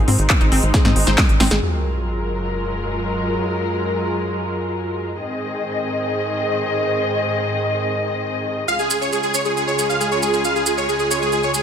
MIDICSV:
0, 0, Header, 1, 7, 480
1, 0, Start_track
1, 0, Tempo, 441176
1, 1765, Time_signature, 4, 2, 24, 8
1, 12650, End_track
2, 0, Start_track
2, 0, Title_t, "Supersaw synth"
2, 0, Program_c, 0, 81
2, 9445, Note_on_c, 0, 77, 96
2, 9524, Note_off_c, 0, 77, 0
2, 9565, Note_on_c, 0, 68, 60
2, 9644, Note_off_c, 0, 68, 0
2, 9684, Note_on_c, 0, 68, 58
2, 9764, Note_off_c, 0, 68, 0
2, 9805, Note_on_c, 0, 73, 87
2, 9884, Note_off_c, 0, 73, 0
2, 9926, Note_on_c, 0, 68, 60
2, 10004, Note_off_c, 0, 68, 0
2, 10045, Note_on_c, 0, 68, 61
2, 10124, Note_off_c, 0, 68, 0
2, 10165, Note_on_c, 0, 73, 93
2, 10244, Note_off_c, 0, 73, 0
2, 10284, Note_on_c, 0, 68, 65
2, 10363, Note_off_c, 0, 68, 0
2, 10405, Note_on_c, 0, 68, 60
2, 10484, Note_off_c, 0, 68, 0
2, 10524, Note_on_c, 0, 73, 87
2, 10603, Note_off_c, 0, 73, 0
2, 10644, Note_on_c, 0, 68, 62
2, 10723, Note_off_c, 0, 68, 0
2, 10763, Note_on_c, 0, 77, 86
2, 10843, Note_off_c, 0, 77, 0
2, 10883, Note_on_c, 0, 68, 66
2, 10963, Note_off_c, 0, 68, 0
2, 11004, Note_on_c, 0, 73, 86
2, 11083, Note_off_c, 0, 73, 0
2, 11123, Note_on_c, 0, 68, 63
2, 11203, Note_off_c, 0, 68, 0
2, 11244, Note_on_c, 0, 68, 61
2, 11323, Note_off_c, 0, 68, 0
2, 11364, Note_on_c, 0, 77, 93
2, 11443, Note_off_c, 0, 77, 0
2, 11484, Note_on_c, 0, 68, 61
2, 11563, Note_off_c, 0, 68, 0
2, 11603, Note_on_c, 0, 68, 60
2, 11683, Note_off_c, 0, 68, 0
2, 11724, Note_on_c, 0, 73, 87
2, 11804, Note_off_c, 0, 73, 0
2, 11845, Note_on_c, 0, 68, 62
2, 11924, Note_off_c, 0, 68, 0
2, 11964, Note_on_c, 0, 68, 60
2, 12044, Note_off_c, 0, 68, 0
2, 12084, Note_on_c, 0, 73, 91
2, 12163, Note_off_c, 0, 73, 0
2, 12203, Note_on_c, 0, 68, 64
2, 12283, Note_off_c, 0, 68, 0
2, 12325, Note_on_c, 0, 68, 63
2, 12404, Note_off_c, 0, 68, 0
2, 12445, Note_on_c, 0, 73, 88
2, 12524, Note_off_c, 0, 73, 0
2, 12565, Note_on_c, 0, 68, 63
2, 12644, Note_off_c, 0, 68, 0
2, 12650, End_track
3, 0, Start_track
3, 0, Title_t, "Synth pluck"
3, 0, Program_c, 1, 84
3, 84, Note_on_c, 1, 60, 78
3, 112, Note_off_c, 1, 60, 0
3, 444, Note_on_c, 1, 63, 103
3, 491, Note_off_c, 1, 63, 0
3, 564, Note_on_c, 1, 60, 101
3, 610, Note_off_c, 1, 60, 0
3, 804, Note_on_c, 1, 68, 103
3, 850, Note_off_c, 1, 68, 0
3, 924, Note_on_c, 1, 60, 79
3, 970, Note_off_c, 1, 60, 0
3, 1164, Note_on_c, 1, 72, 103
3, 1211, Note_off_c, 1, 72, 0
3, 1524, Note_on_c, 1, 60, 98
3, 1571, Note_off_c, 1, 60, 0
3, 1644, Note_on_c, 1, 68, 74
3, 1691, Note_off_c, 1, 68, 0
3, 12650, End_track
4, 0, Start_track
4, 0, Title_t, "String section"
4, 0, Program_c, 2, 48
4, 0, Note_on_c, 2, 56, 80
4, 0, Note_on_c, 2, 60, 76
4, 0, Note_on_c, 2, 63, 88
4, 1745, Note_off_c, 2, 56, 0
4, 1745, Note_off_c, 2, 60, 0
4, 1745, Note_off_c, 2, 63, 0
4, 1764, Note_on_c, 2, 42, 74
4, 1764, Note_on_c, 2, 54, 65
4, 1764, Note_on_c, 2, 56, 67
4, 1764, Note_on_c, 2, 65, 67
4, 1764, Note_on_c, 2, 70, 79
4, 5566, Note_off_c, 2, 42, 0
4, 5566, Note_off_c, 2, 54, 0
4, 5566, Note_off_c, 2, 56, 0
4, 5566, Note_off_c, 2, 65, 0
4, 5566, Note_off_c, 2, 70, 0
4, 5604, Note_on_c, 2, 44, 73
4, 5604, Note_on_c, 2, 51, 68
4, 5604, Note_on_c, 2, 60, 69
4, 5604, Note_on_c, 2, 68, 70
4, 5604, Note_on_c, 2, 75, 80
4, 9406, Note_off_c, 2, 44, 0
4, 9406, Note_off_c, 2, 51, 0
4, 9406, Note_off_c, 2, 60, 0
4, 9406, Note_off_c, 2, 68, 0
4, 9406, Note_off_c, 2, 75, 0
4, 9443, Note_on_c, 2, 37, 74
4, 9443, Note_on_c, 2, 49, 68
4, 9443, Note_on_c, 2, 56, 67
4, 9443, Note_on_c, 2, 65, 70
4, 9443, Note_on_c, 2, 68, 78
4, 12650, Note_off_c, 2, 37, 0
4, 12650, Note_off_c, 2, 49, 0
4, 12650, Note_off_c, 2, 56, 0
4, 12650, Note_off_c, 2, 65, 0
4, 12650, Note_off_c, 2, 68, 0
4, 12650, End_track
5, 0, Start_track
5, 0, Title_t, "Analog synth bass"
5, 0, Program_c, 3, 38
5, 84, Note_on_c, 3, 44, 99
5, 186, Note_off_c, 3, 44, 0
5, 204, Note_on_c, 3, 32, 93
5, 306, Note_off_c, 3, 32, 0
5, 444, Note_on_c, 3, 32, 88
5, 546, Note_off_c, 3, 32, 0
5, 565, Note_on_c, 3, 32, 96
5, 667, Note_off_c, 3, 32, 0
5, 684, Note_on_c, 3, 32, 96
5, 786, Note_off_c, 3, 32, 0
5, 925, Note_on_c, 3, 44, 89
5, 1027, Note_off_c, 3, 44, 0
5, 1044, Note_on_c, 3, 32, 98
5, 1146, Note_off_c, 3, 32, 0
5, 1165, Note_on_c, 3, 32, 88
5, 1267, Note_off_c, 3, 32, 0
5, 1404, Note_on_c, 3, 32, 88
5, 1506, Note_off_c, 3, 32, 0
5, 1525, Note_on_c, 3, 32, 99
5, 1626, Note_off_c, 3, 32, 0
5, 1644, Note_on_c, 3, 32, 92
5, 1746, Note_off_c, 3, 32, 0
5, 12650, End_track
6, 0, Start_track
6, 0, Title_t, "Sub drop"
6, 0, Program_c, 4, 103
6, 1764, Note_on_c, 4, 60, 67
6, 3684, Note_off_c, 4, 60, 0
6, 12650, End_track
7, 0, Start_track
7, 0, Title_t, "Drums"
7, 85, Note_on_c, 9, 46, 98
7, 193, Note_off_c, 9, 46, 0
7, 205, Note_on_c, 9, 42, 56
7, 313, Note_off_c, 9, 42, 0
7, 324, Note_on_c, 9, 36, 111
7, 324, Note_on_c, 9, 39, 113
7, 324, Note_on_c, 9, 42, 82
7, 433, Note_off_c, 9, 36, 0
7, 433, Note_off_c, 9, 39, 0
7, 433, Note_off_c, 9, 42, 0
7, 444, Note_on_c, 9, 42, 40
7, 553, Note_off_c, 9, 42, 0
7, 564, Note_on_c, 9, 46, 101
7, 673, Note_off_c, 9, 46, 0
7, 684, Note_on_c, 9, 42, 54
7, 793, Note_off_c, 9, 42, 0
7, 804, Note_on_c, 9, 36, 111
7, 804, Note_on_c, 9, 38, 61
7, 804, Note_on_c, 9, 42, 83
7, 913, Note_off_c, 9, 36, 0
7, 913, Note_off_c, 9, 38, 0
7, 913, Note_off_c, 9, 42, 0
7, 924, Note_on_c, 9, 38, 56
7, 924, Note_on_c, 9, 42, 37
7, 1033, Note_off_c, 9, 38, 0
7, 1033, Note_off_c, 9, 42, 0
7, 1044, Note_on_c, 9, 46, 101
7, 1153, Note_off_c, 9, 46, 0
7, 1164, Note_on_c, 9, 38, 68
7, 1164, Note_on_c, 9, 42, 56
7, 1273, Note_off_c, 9, 38, 0
7, 1273, Note_off_c, 9, 42, 0
7, 1284, Note_on_c, 9, 36, 116
7, 1284, Note_on_c, 9, 38, 85
7, 1284, Note_on_c, 9, 39, 122
7, 1284, Note_on_c, 9, 42, 79
7, 1393, Note_off_c, 9, 36, 0
7, 1393, Note_off_c, 9, 38, 0
7, 1393, Note_off_c, 9, 39, 0
7, 1393, Note_off_c, 9, 42, 0
7, 1405, Note_on_c, 9, 42, 39
7, 1514, Note_off_c, 9, 42, 0
7, 1524, Note_on_c, 9, 38, 98
7, 1524, Note_on_c, 9, 46, 101
7, 1633, Note_off_c, 9, 38, 0
7, 1633, Note_off_c, 9, 46, 0
7, 1645, Note_on_c, 9, 38, 91
7, 1645, Note_on_c, 9, 42, 56
7, 1753, Note_off_c, 9, 38, 0
7, 1753, Note_off_c, 9, 42, 0
7, 9448, Note_on_c, 9, 70, 47
7, 9557, Note_off_c, 9, 70, 0
7, 9564, Note_on_c, 9, 70, 23
7, 9673, Note_off_c, 9, 70, 0
7, 9687, Note_on_c, 9, 70, 84
7, 9795, Note_off_c, 9, 70, 0
7, 9814, Note_on_c, 9, 70, 34
7, 9923, Note_off_c, 9, 70, 0
7, 9930, Note_on_c, 9, 70, 51
7, 10038, Note_off_c, 9, 70, 0
7, 10044, Note_on_c, 9, 70, 25
7, 10152, Note_off_c, 9, 70, 0
7, 10163, Note_on_c, 9, 70, 80
7, 10272, Note_off_c, 9, 70, 0
7, 10282, Note_on_c, 9, 70, 37
7, 10391, Note_off_c, 9, 70, 0
7, 10413, Note_on_c, 9, 70, 47
7, 10522, Note_off_c, 9, 70, 0
7, 10535, Note_on_c, 9, 70, 24
7, 10644, Note_off_c, 9, 70, 0
7, 10648, Note_on_c, 9, 70, 91
7, 10757, Note_off_c, 9, 70, 0
7, 10772, Note_on_c, 9, 70, 35
7, 10881, Note_off_c, 9, 70, 0
7, 10890, Note_on_c, 9, 70, 50
7, 10999, Note_off_c, 9, 70, 0
7, 11009, Note_on_c, 9, 70, 23
7, 11117, Note_off_c, 9, 70, 0
7, 11125, Note_on_c, 9, 70, 80
7, 11234, Note_off_c, 9, 70, 0
7, 11244, Note_on_c, 9, 70, 33
7, 11353, Note_off_c, 9, 70, 0
7, 11364, Note_on_c, 9, 70, 48
7, 11473, Note_off_c, 9, 70, 0
7, 11490, Note_on_c, 9, 70, 24
7, 11599, Note_off_c, 9, 70, 0
7, 11600, Note_on_c, 9, 70, 83
7, 11708, Note_off_c, 9, 70, 0
7, 11727, Note_on_c, 9, 70, 35
7, 11836, Note_off_c, 9, 70, 0
7, 11848, Note_on_c, 9, 70, 48
7, 11956, Note_off_c, 9, 70, 0
7, 11961, Note_on_c, 9, 70, 25
7, 12070, Note_off_c, 9, 70, 0
7, 12089, Note_on_c, 9, 70, 86
7, 12198, Note_off_c, 9, 70, 0
7, 12213, Note_on_c, 9, 70, 33
7, 12317, Note_off_c, 9, 70, 0
7, 12317, Note_on_c, 9, 70, 46
7, 12426, Note_off_c, 9, 70, 0
7, 12437, Note_on_c, 9, 70, 24
7, 12546, Note_off_c, 9, 70, 0
7, 12557, Note_on_c, 9, 70, 86
7, 12650, Note_off_c, 9, 70, 0
7, 12650, End_track
0, 0, End_of_file